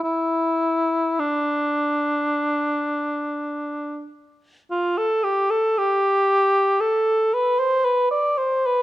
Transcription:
\new Staff \with { instrumentName = "Cor anglais" } { \time 4/4 \key d \dorian \tempo 4 = 54 e'4 d'2~ d'8 r8 | f'16 a'16 g'16 a'16 g'4 a'8 b'16 c''16 b'16 d''16 c''16 b'16 | }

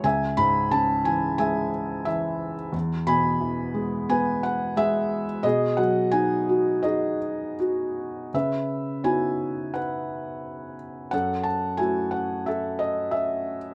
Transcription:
<<
  \new Staff \with { instrumentName = "Felt piano" } { \time 4/4 \key cis \minor \tempo 4 = 88 << { gis''8 b''8 a''8 gis''8 gis''4 e''8. r16 | r8 b''4. gis''8 fis''8 e''8. r16 | dis''8 fis''8 gis''4 dis''4 r4 | e''4 gis''4 fis''4. r8 |
fis''8 a''8 gis''8 fis''8 e''8 dis''8 e''8. r16 | } \\ { e''2 e''2 | r8 gis''4. b'2 | gis'2 gis'2 | b'2 b'2 |
a'2 a'2 | } >> }
  \new Staff \with { instrumentName = "Felt piano" } { \clef bass \time 4/4 \key cis \minor cis,8 gis,8 cis8 e8 gis4 e4 | e,8 b,8 e8 gis8 b4 gis4 | b,8 fis8 dis'8 fis'8 dis'4 fis'4 | cis4 <b cis' dis' e' fis'>2. |
fis,4 <a e' fis'>2. | }
>>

